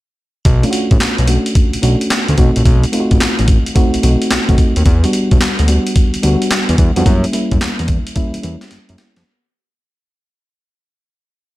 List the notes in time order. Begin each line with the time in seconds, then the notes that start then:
0.45 B1, kick, closed hi-hat
0.63 A3 C#4 D4 F4, closed hi-hat
0.71 F#4, closed hi-hat
0.91 A1, kick, closed hi-hat
1.00 B1, snare, clap, closed hi-hat
1.18 B1, closed hi-hat
1.27 A3 C#4 D4 F#4, closed hi-hat
1.46 closed hi-hat
1.55 kick, closed hi-hat
1.73 B1, closed hi-hat
1.82 B1 A3 C#4 D4 F#4, closed hi-hat
2.01 closed hi-hat
2.10 snare, clap, closed hi-hat
2.28 D2, closed hi-hat
2.37 B1 A3 C4 D#4 F#4, kick, closed hi-hat
2.56 A#1, closed hi-hat
2.65 B1, kick, closed hi-hat
2.84 closed hi-hat
2.92 A3 C4 D#4 F4, closed hi-hat
3.00 F#4
3.11 A1, kick, closed hi-hat
3.20 A1, snare, clap, closed hi-hat
3.39 A1, closed hi-hat
3.48 kick, closed hi-hat
3.66 closed hi-hat
3.75 A3 C4 D#4 F#4, kick, closed hi-hat
3.94 B1, closed hi-hat
4.03 B1 A3 C4 D#4 F#4, closed hi-hat
4.22 closed hi-hat
4.31 B1, snare, clap, closed hi-hat
4.48 B1 A3 C4 D#4 F#4, kick, closed hi-hat
4.58 kick, closed hi-hat
4.76 D#2, closed hi-hat
4.86 E2, kick, closed hi-hat
5.04 G3 B3 D4 F#4, closed hi-hat
5.13 closed hi-hat
5.31 B1, kick, closed hi-hat
5.41 D2, snare, clap, closed hi-hat
5.59 D2, closed hi-hat
5.68 G3 B3 D4 F#4, closed hi-hat
5.87 closed hi-hat
5.96 kick, closed hi-hat
6.14 D2, closed hi-hat
6.23 D2 G3 B3 D4 F#4, closed hi-hat
6.42 closed hi-hat
6.51 snare, clap, closed hi-hat
6.69 E2, closed hi-hat
6.78 E2, kick, closed hi-hat
6.96 F2 G3 B3 D4 F#4, closed hi-hat
7.05 F#2 G3 A#3 C#4 E4, kick, closed hi-hat
7.24 closed hi-hat
7.33 G3 A#3 C#4 E4, closed hi-hat
7.51 F#2, kick, closed hi-hat
7.61 E2, snare, clap, closed hi-hat
7.79 E2, closed hi-hat
7.88 kick, closed hi-hat
8.07 closed hi-hat
8.15 G3 A#3 C#4 E4, kick, closed hi-hat
8.34 E2, closed hi-hat
8.43 E2 G3 A#3 C#4 E4, closed hi-hat
8.61 snare, closed hi-hat
8.71 F#2, snare, closed hi-hat
8.89 F#2 G3 A#3 C#4 E4, closed hi-hat
8.98 snare, closed hi-hat
9.16 F2, snare, closed hi-hat